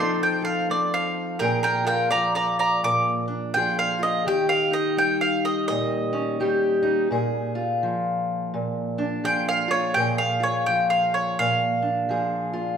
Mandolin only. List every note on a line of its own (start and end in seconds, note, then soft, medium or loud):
0.00 0.20 C6 medium
0.23 0.44 G5 medium
0.45 0.67 F5 medium
0.71 0.92 D5 medium
0.94 1.39 F5 medium
1.39 1.61 A#4 medium
1.39 1.62 G5 medium
1.63 1.85 A#4 medium
1.63 1.86 G5 medium
1.87 2.09 A#4 medium
1.87 2.10 G5 medium
2.11 2.33 D5 medium
2.11 2.34 A#5 medium
2.35 2.57 D5 medium
2.35 2.58 A#5 medium
2.59 2.81 D5 medium
2.59 2.82 A#5 medium
2.84 3.25 D6 medium
3.54 3.77 G5 medium
3.79 4.01 F5 medium
4.03 4.25 D#5 medium
4.28 4.49 G5 medium
4.49 4.72 F5 medium
4.73 4.96 D#5 medium
4.98 5.20 G5 medium
5.21 5.44 F5 medium
5.45 5.67 D#5 medium
5.68 7.06 D#5 medium
9.25 9.48 G5 medium
9.49 9.71 F5 medium
9.71 9.94 C#5 medium
9.94 10.18 G5 medium
10.18 10.42 F5 medium
10.43 10.66 C#5 medium
10.66 10.90 G5 medium
10.90 11.13 F5 medium
11.14 11.37 C#5 medium
11.39 12.77 F5 loud